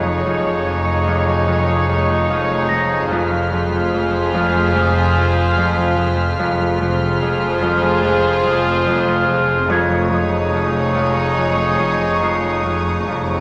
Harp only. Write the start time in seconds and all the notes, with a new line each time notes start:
Already playing: F2
0.26 F2
0.66 F2
1.07 F2
1.48 F2
1.89 F2
2.30 F2
2.71 F2
3.11 F2
3.53 F2
3.94 F2
4.35 F2
4.76 F2
5.18 F2
5.58 F2
5.97 F2
6.39 F2
6.81 F2
7.22 F2
7.62 F2
8.05 F2
8.45 F2
8.87 F2
9.28 F2
9.70 F2
10.11 F2
10.54 F2
10.96 F2
11.37 F2
11.79 F2
12.22 F2
12.65 F2
13.08 F2